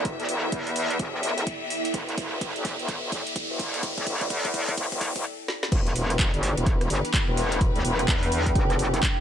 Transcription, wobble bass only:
Already playing: E1
0.20 D2
0.29 E1
0.52 E2
0.99 F#1
1.94 E1
2.18 E1
2.56 G1
2.79 E1
3.12 G1
3.50 E1
3.98 D2
4.07 E1
4.30 E2
4.78 E1
4.92 E1
5.16 E1
5.72 E1
5.96 E1
6.34 G1
6.57 E1
6.90 G1
7.28 E1
7.75 D2
7.85 E1
8.08 E2
8.55 F#1

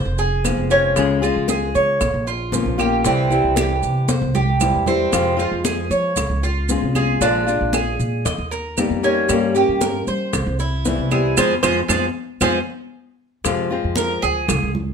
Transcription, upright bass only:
0.05 F1
0.58 F1
0.97 C#2
1.36 C#2
1.75 C#3
2.01 A#1
2.14 A#1
2.66 A#1
3.06 C2
3.44 C2
3.83 C3
4.22 C2
4.74 E2
5.13 F2
5.52 F2
5.90 F3
6.16 C#2
6.30 C#2
6.82 C2
7.21 A#1
7.61 A#1
7.99 A#2
8.26 D#2
8.38 D#2
8.90 F2
9.29 G2
9.68 G2
10.07 G3
10.33 C2
10.46 C2
10.98 C2
11.37 F2
11.63 F2
11.89 F2
12.41 F2
13.45 F2
13.84 F2
14.23 D2
14.50 C#2
14.63 C#2

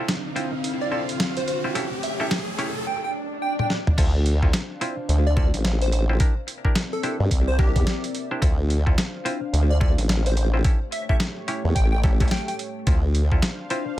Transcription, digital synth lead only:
0.81 D5
0.92 D5
1.37 C5
1.48 C5
2.03 E5
2.21 E5
2.87 G5
3.04 G5
3.42 G5
3.59 G5
5.27 D5
5.38 D5
5.82 C5
5.92 C5
6.93 A4
7.48 C5
7.59 G4
9.70 D5
9.81 D5
10.27 C5
10.36 C5
10.92 E5
11.09 E5
11.75 G5
11.92 G5
12.31 G5
12.48 G5

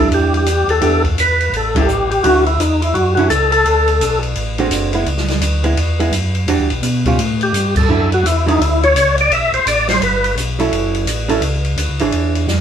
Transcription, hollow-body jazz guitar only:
0.00 G3 D4 E4
0.81 E3 B3 D4 G4
1.76 G3 C#4 E4
2.24 D3 F#3 C#4 E4
3.17 D3 F#3 C#4 E4
4.59 D3 G#3 C4 F#4
4.94 G#3 B3 E4
5.64 G#3 B3 E4
6.00 G#3 B3 E4
6.48 E3 G3 D4 F#4
7.06 G3 C#4 F4
7.89 D3 F#3 C#4 E4
8.47 D3 F#3 C#4 E4
10.59 F#3 C#4 E4 A4
11.29 F#3 C#4 E4 A4
12.00 E3 D4 G#4 C#5

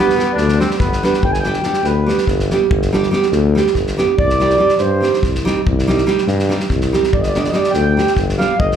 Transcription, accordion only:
Already playing: B4
0.33 D5
0.59 C5
0.79 B4
1.05 B4
1.24 G5
1.32 G#5
1.40 G5
1.85 B4
4.19 D5
4.79 C5
7.13 D5
7.21 D#5
7.28 D5
7.36 D#5
7.42 D5
7.49 D#5
7.55 D5
7.70 G5
8.38 F5
8.59 D#5

